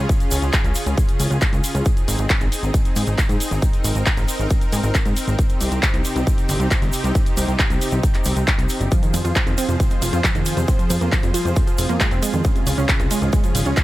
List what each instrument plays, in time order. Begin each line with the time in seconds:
Already playing: supersaw synth C#3 C#4 F4 G#4
0.09 kick, closed hi-hat, shaker
0.20 closed hi-hat, shaker
0.31 analog synth bass C#2, open hi-hat, shaker
0.42 analog synth bass C#2, closed hi-hat, shaker
0.53 kick, clap, shaker
0.64 analog synth bass C#2, closed hi-hat, shaker
0.75 open hi-hat, shaker
0.87 analog synth bass C#2, closed hi-hat, shaker
0.97 kick, closed hi-hat, shaker
1.08 closed hi-hat, shaker
1.20 analog synth bass C#2, open hi-hat, shaker
1.31 analog synth bass C#2, closed hi-hat, shaker
1.41 kick, clap, closed hi-hat, shaker
1.53 analog synth bass C#2, closed hi-hat, shaker
1.64 open hi-hat, shaker
1.75 analog synth bass C#2, closed hi-hat, shaker
1.85 supersaw synth C4 D#4, kick, closed hi-hat, shaker
1.97 closed hi-hat, shaker
2.08 analog synth bass G#1, open hi-hat, shaker
2.18 analog synth bass G#1, closed hi-hat, shaker
2.29 kick, clap, shaker
2.41 analog synth bass G#1, closed hi-hat, shaker
2.52 open hi-hat, shaker
2.63 analog synth bass G#1, shaker
2.74 kick, closed hi-hat, shaker
2.85 closed hi-hat, shaker
2.96 analog synth bass G#2, open hi-hat, shaker
3.07 analog synth bass G#1, closed hi-hat, shaker
3.18 kick, clap, closed hi-hat, shaker
3.29 analog synth bass G#2, closed hi-hat, shaker
3.40 open hi-hat, shaker
3.51 analog synth bass G#1, closed hi-hat, shaker
3.62 supersaw synth A#4, kick, closed hi-hat, shaker
3.73 closed hi-hat, shaker
3.84 analog synth bass G#1, open hi-hat, shaker
3.95 analog synth bass G#1, closed hi-hat, shaker
4.06 kick, clap, shaker
4.17 analog synth bass G#1, closed hi-hat, shaker
4.28 open hi-hat, shaker
4.39 analog synth bass G#1, closed hi-hat, shaker
4.50 kick, closed hi-hat, shaker
4.61 closed hi-hat, shaker
4.72 analog synth bass G#2, open hi-hat, shaker
4.83 analog synth bass G#1, closed hi-hat, shaker
4.95 kick, clap, closed hi-hat, shaker
5.06 analog synth bass G#2, closed hi-hat, shaker
5.16 open hi-hat, shaker
5.28 analog synth bass G#1, closed hi-hat, shaker
5.39 supersaw synth C3 D#4 G4, kick, closed hi-hat, shaker
5.49 closed hi-hat, shaker
5.61 analog synth bass C2, open hi-hat, shaker
5.72 analog synth bass C2, closed hi-hat, shaker
5.83 kick, clap, shaker
5.94 analog synth bass C2, closed hi-hat, shaker
6.05 open hi-hat, shaker
6.16 analog synth bass C2, closed hi-hat, shaker
6.27 kick, closed hi-hat, shaker
6.38 closed hi-hat, shaker
6.49 analog synth bass G1, open hi-hat, shaker
6.60 analog synth bass C2, closed hi-hat, shaker
6.71 kick, clap, closed hi-hat, shaker
6.82 analog synth bass G1, closed hi-hat, shaker
6.93 open hi-hat, shaker
7.04 analog synth bass C2, closed hi-hat, shaker
7.15 kick, closed hi-hat, shaker
7.26 closed hi-hat, shaker
7.37 analog synth bass C2, open hi-hat, shaker
7.48 analog synth bass C2, closed hi-hat, shaker
7.59 kick, clap, shaker
7.70 analog synth bass C2, closed hi-hat, shaker
7.81 open hi-hat, shaker
7.92 analog synth bass C2, closed hi-hat, shaker
8.03 kick, closed hi-hat, shaker
8.14 clap, closed hi-hat, shaker
8.24 analog synth bass C2, open hi-hat, shaker
8.36 analog synth bass C2, closed hi-hat, shaker
8.47 kick, clap, closed hi-hat, shaker
8.59 analog synth bass C2, closed hi-hat, shaker
8.69 open hi-hat, shaker
8.80 analog synth bass G1, closed hi-hat, shaker
8.92 synth pluck F3, supersaw synth F3 F4 G#4 C5, kick, closed hi-hat, shaker
9.03 synth pluck D#3, closed hi-hat, shaker
9.14 analog synth bass F2, synth pluck F3, open hi-hat, ride, shaker
9.24 analog synth bass F2, synth pluck F4, closed hi-hat, shaker
9.35 synth pluck F3, kick, clap, shaker
9.47 analog synth bass F2, synth pluck D#3, closed hi-hat, shaker
9.58 synth pluck C4, open hi-hat, ride, shaker
9.69 analog synth bass F2, synth pluck C3, closed hi-hat, shaker
9.80 synth pluck C4, kick, closed hi-hat, shaker
9.90 synth pluck G#3, closed hi-hat, shaker
10.02 analog synth bass F1, synth pluck F3, open hi-hat, ride, shaker
10.13 analog synth bass F2, synth pluck F4, closed hi-hat, shaker
10.24 synth pluck F3, kick, clap, closed hi-hat, shaker
10.35 analog synth bass F1, synth pluck D#3, closed hi-hat, shaker
10.46 synth pluck F2, open hi-hat, ride, shaker
10.57 analog synth bass F2, synth pluck C3, closed hi-hat, shaker
10.68 synth pluck C4, kick, closed hi-hat, shaker
10.79 synth pluck F3, closed hi-hat, shaker
10.90 analog synth bass F2, synth pluck F3, open hi-hat, ride, shaker
11.01 analog synth bass F2, synth pluck A#3, closed hi-hat, shaker
11.12 synth pluck F3, kick, clap, shaker
11.23 analog synth bass F2, synth pluck G3, closed hi-hat, shaker
11.34 synth pluck F4, open hi-hat, ride, shaker
11.45 analog synth bass F2, synth pluck C3, closed hi-hat, shaker
11.56 synth pluck F2, kick, closed hi-hat, shaker
11.67 synth pluck F3, closed hi-hat, shaker
11.78 analog synth bass F1, synth pluck C4, open hi-hat, ride, shaker
11.89 analog synth bass F2, synth pluck A#3, closed hi-hat, shaker
12.00 synth pluck G#3, kick, clap, closed hi-hat, shaker
12.11 analog synth bass F1, synth pluck C4, closed hi-hat, shaker
12.22 synth pluck G#3, open hi-hat, ride, shaker
12.33 analog synth bass F2, synth pluck D#3, closed hi-hat, shaker
12.44 supersaw synth C#3 C#4, synth pluck C#3, kick, closed hi-hat, shaker
12.56 synth pluck C3, closed hi-hat, shaker
12.67 analog synth bass C#2, synth pluck C#3, open hi-hat, ride, shaker
12.78 analog synth bass C#2, synth pluck C#4, closed hi-hat, shaker
12.89 synth pluck C#3, kick, clap, shaker
13.00 analog synth bass C#2, synth pluck C3, closed hi-hat, shaker
13.11 synth pluck G#3, open hi-hat, ride, shaker
13.22 analog synth bass C#2, synth pluck G#2, closed hi-hat, shaker
13.33 synth pluck G#3, kick, closed hi-hat, shaker
13.44 synth pluck F3, closed hi-hat, shaker
13.55 analog synth bass G#1, synth pluck C#3, open hi-hat, ride, shaker
13.65 analog synth bass C#2, synth pluck C#4, closed hi-hat, shaker
13.77 synth pluck C#3, kick, clap, closed hi-hat, shaker